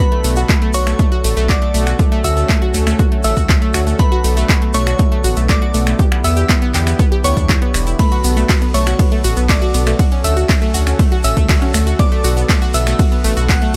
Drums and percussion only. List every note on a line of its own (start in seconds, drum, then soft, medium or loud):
0.12 closed hi-hat soft
0.24 open hi-hat loud
0.24 shaker loud
0.36 closed hi-hat soft
0.36 shaker soft
0.49 kick loud
0.49 clap loud
0.49 closed hi-hat medium
0.49 shaker soft
0.62 closed hi-hat soft
0.74 open hi-hat loud
0.74 shaker loud
0.87 finger snap medium
0.87 closed hi-hat soft
0.87 shaker medium
0.99 kick loud
0.99 closed hi-hat medium
0.99 shaker soft
1.12 closed hi-hat soft
1.24 open hi-hat loud
1.24 shaker loud
1.36 closed hi-hat soft
1.36 shaker soft
1.49 kick loud
1.49 clap loud
1.49 closed hi-hat medium
1.49 shaker soft
1.62 closed hi-hat soft
1.74 open hi-hat medium
1.74 shaker medium
1.87 finger snap medium
1.87 closed hi-hat soft
1.87 shaker medium
1.99 kick loud
1.99 closed hi-hat medium
1.99 shaker soft
2.12 closed hi-hat soft
2.24 open hi-hat loud
2.24 shaker medium
2.37 closed hi-hat soft
2.37 shaker soft
2.49 kick loud
2.49 clap loud
2.49 closed hi-hat medium
2.49 shaker soft
2.62 closed hi-hat soft
2.74 open hi-hat medium
2.74 shaker loud
2.87 finger snap medium
2.87 closed hi-hat soft
2.87 shaker medium
2.99 kick loud
2.99 closed hi-hat medium
2.99 shaker soft
3.12 closed hi-hat soft
3.24 open hi-hat loud
3.24 shaker loud
3.37 kick medium
3.37 closed hi-hat soft
3.37 shaker medium
3.49 kick loud
3.49 clap loud
3.49 closed hi-hat medium
3.49 shaker soft
3.62 closed hi-hat soft
3.74 finger snap medium
3.74 open hi-hat medium
3.74 shaker medium
3.87 closed hi-hat soft
3.87 shaker medium
3.99 kick loud
3.99 closed hi-hat medium
3.99 shaker soft
4.12 closed hi-hat soft
4.24 open hi-hat loud
4.24 shaker medium
4.37 closed hi-hat soft
4.37 shaker medium
4.49 kick loud
4.49 clap loud
4.49 closed hi-hat medium
4.49 shaker soft
4.62 closed hi-hat soft
4.74 open hi-hat loud
4.74 shaker medium
4.87 finger snap medium
4.87 closed hi-hat soft
4.87 shaker soft
4.99 kick loud
4.99 closed hi-hat medium
4.99 shaker soft
5.12 closed hi-hat soft
5.24 open hi-hat loud
5.24 shaker medium
5.36 closed hi-hat soft
5.36 shaker medium
5.49 kick loud
5.49 clap loud
5.49 closed hi-hat medium
5.49 shaker soft
5.62 closed hi-hat soft
5.74 open hi-hat medium
5.74 shaker medium
5.87 finger snap medium
5.87 closed hi-hat soft
5.87 shaker soft
5.99 kick loud
5.99 closed hi-hat medium
5.99 shaker soft
6.12 finger snap medium
6.12 closed hi-hat soft
6.24 open hi-hat loud
6.24 shaker loud
6.36 closed hi-hat soft
6.36 shaker medium
6.49 kick loud
6.49 clap loud
6.49 closed hi-hat medium
6.49 shaker soft
6.62 closed hi-hat soft
6.74 clap medium
6.74 open hi-hat medium
6.74 shaker medium
6.87 finger snap medium
6.87 closed hi-hat soft
6.87 shaker medium
6.99 kick loud
6.99 closed hi-hat medium
6.99 shaker soft
7.12 closed hi-hat soft
7.24 open hi-hat loud
7.24 shaker medium
7.37 kick medium
7.37 closed hi-hat soft
7.37 shaker medium
7.49 kick loud
7.49 clap loud
7.49 closed hi-hat medium
7.49 shaker soft
7.62 closed hi-hat soft
7.74 finger snap medium
7.74 open hi-hat medium
7.74 shaker loud
7.87 closed hi-hat soft
7.87 shaker soft
7.99 kick loud
7.99 closed hi-hat medium
7.99 ride medium
7.99 shaker soft
8.12 closed hi-hat soft
8.24 open hi-hat loud
8.24 shaker loud
8.37 closed hi-hat soft
8.37 shaker medium
8.49 kick loud
8.49 clap loud
8.49 closed hi-hat medium
8.49 ride medium
8.49 shaker soft
8.62 closed hi-hat soft
8.74 open hi-hat loud
8.74 shaker medium
8.87 finger snap medium
8.87 closed hi-hat soft
8.87 shaker medium
8.99 kick loud
8.99 closed hi-hat medium
8.99 ride medium
8.99 shaker soft
9.12 closed hi-hat soft
9.24 open hi-hat loud
9.24 shaker medium
9.37 closed hi-hat soft
9.37 shaker medium
9.49 kick loud
9.49 clap loud
9.49 closed hi-hat medium
9.49 ride medium
9.49 shaker soft
9.62 closed hi-hat soft
9.74 open hi-hat loud
9.74 shaker loud
9.86 finger snap medium
9.86 closed hi-hat soft
9.86 shaker medium
9.99 kick loud
9.99 closed hi-hat medium
9.99 ride medium
9.99 shaker soft
10.12 closed hi-hat soft
10.24 open hi-hat loud
10.24 shaker medium
10.37 closed hi-hat soft
10.37 shaker medium
10.49 kick loud
10.49 clap loud
10.49 closed hi-hat medium
10.49 ride medium
10.49 shaker soft
10.62 closed hi-hat soft
10.74 open hi-hat loud
10.74 shaker loud
10.87 finger snap medium
10.87 closed hi-hat soft
10.87 shaker medium
10.99 kick loud
10.99 closed hi-hat medium
10.99 ride medium
10.99 shaker soft
11.12 closed hi-hat soft
11.24 open hi-hat loud
11.24 shaker loud
11.37 kick medium
11.37 closed hi-hat soft
11.37 shaker medium
11.49 kick loud
11.49 clap loud
11.49 closed hi-hat medium
11.49 ride medium
11.49 shaker soft
11.62 closed hi-hat soft
11.74 finger snap medium
11.74 open hi-hat loud
11.74 shaker loud
11.87 closed hi-hat soft
11.87 shaker medium
11.99 kick loud
11.99 closed hi-hat medium
11.99 ride medium
11.99 shaker soft
12.12 closed hi-hat soft
12.24 open hi-hat loud
12.24 shaker medium
12.37 closed hi-hat soft
12.37 shaker medium
12.49 kick loud
12.49 clap loud
12.49 closed hi-hat medium
12.49 ride medium
12.49 shaker soft
12.62 closed hi-hat soft
12.74 open hi-hat loud
12.74 shaker loud
12.87 finger snap medium
12.87 closed hi-hat soft
12.87 shaker medium
12.99 kick loud
12.99 closed hi-hat medium
12.99 ride medium
12.99 shaker soft
13.12 closed hi-hat soft
13.24 open hi-hat loud
13.24 shaker loud
13.36 closed hi-hat soft
13.36 shaker medium
13.49 kick loud
13.49 clap loud
13.49 closed hi-hat medium
13.49 ride medium
13.49 shaker soft
13.62 closed hi-hat soft